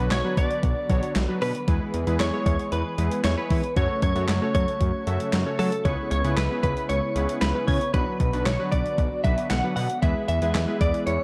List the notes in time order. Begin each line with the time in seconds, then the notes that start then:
Already playing: D3 F#3 B3 F#4 B4
0.00 F#3 B3 D4 F#4 B4
0.11 B1 C#5, snare, clap, closed hi-hat
0.24 F#3 B3 D4 F#4 B4
0.37 B1 D5, kick, closed hi-hat
0.51 closed hi-hat
0.63 B1, kick, closed hi-hat
0.90 B1 F#3 B3 D4 F#4 C#5, kick, closed hi-hat
1.03 closed hi-hat
1.16 B1, snare, clap, closed hi-hat
1.29 F#3 B3 D4 F#4 B4
1.42 B2 B4, open hi-hat
1.55 closed hi-hat
1.68 E2 E3 G#3 B3 E4 G#4 B4, kick, closed hi-hat
1.94 E2, closed hi-hat
2.07 E2 G#3 B3 E4 G#4 B4, closed hi-hat
2.20 E2 C#5, snare, clap, closed hi-hat
2.33 G#3 B3 E4 G#4 C#5
2.46 E2 C#5, kick, closed hi-hat
2.59 closed hi-hat
2.72 E2 B4, closed hi-hat
2.98 E2 G#3 B3 E4 G#4 B4, closed hi-hat
3.11 closed hi-hat
3.24 E2 C#5, snare, clap, closed hi-hat
3.38 G#3 B3 E4 G#4 B4 C#5
3.50 E3, kick, open hi-hat
3.64 closed hi-hat
3.77 F#2 C#3 F#3 A3 C#4 F#4 A4 C#5, kick, closed hi-hat
4.02 F#2 C#5, kick, closed hi-hat
4.16 F#2 A3 C#4 F#4 A4 C#5, closed hi-hat
4.28 F#2, snare, clap, closed hi-hat
4.42 A3 C#4 F#4 A4 C#5
4.55 F#2 C#5, kick, closed hi-hat
4.68 closed hi-hat
4.81 F#2, kick, closed hi-hat
5.07 F#2 A3 C#4 F#4 A4 E5, closed hi-hat
5.20 closed hi-hat
5.33 F#2, snare, clap, closed hi-hat
5.46 A3 C#4 F#4 A4 C#5
5.59 F#3 A4, open hi-hat
5.72 closed hi-hat
5.85 C#2 G#3 B3 C#4 E4 G#4 B4 C#5, kick, closed hi-hat
6.11 C#2 C#5, closed hi-hat
6.24 C#2 B3 C#4 E4 G#4 B4, closed hi-hat
6.37 C#2 B4, snare, clap, closed hi-hat
6.50 B3 C#4 E4 G#4 B4
6.63 C#2 B4, kick, closed hi-hat
6.77 closed hi-hat
6.89 C#2 C#5, closed hi-hat
7.16 C#2 B3 C#4 E4 G#4 B4, closed hi-hat
7.29 closed hi-hat
7.41 C#2 B4, snare, clap, closed hi-hat
7.55 B3 C#4 E4 G#4 B4
7.67 C#3 C#5, kick, open hi-hat
7.81 closed hi-hat
7.94 B1 D3 F#3 B3 D4 F#4 B4, kick, closed hi-hat
8.20 B1, kick, closed hi-hat
8.33 B1 F#3 B3 D4 F#4 B4, closed hi-hat
8.46 B1 C#5, snare, clap, closed hi-hat
8.59 F#3 B3 D4 F#4 B4
8.72 B1 D5, kick, closed hi-hat
8.86 closed hi-hat
8.98 B1, kick, closed hi-hat
9.24 B1 F#3 B3 D4 F#4 B4 E5, kick, closed hi-hat
9.38 closed hi-hat
9.50 B1 F#5, snare, clap, closed hi-hat
9.64 F#3 B3 D4 F#4 B4
9.76 B2 F#5, open hi-hat
9.90 closed hi-hat
10.02 E2 E3 G#3 B3 E4 G#4 B4 E5, kick, closed hi-hat
10.28 E2 E5, closed hi-hat
10.42 E2 G#3 B3 E4 G#4 B4, closed hi-hat
10.55 E2, snare, clap, closed hi-hat
10.68 G#3 B3 E4 G#4 B4
10.81 E2 D5, kick, closed hi-hat
10.94 closed hi-hat
11.07 E2 C#5, closed hi-hat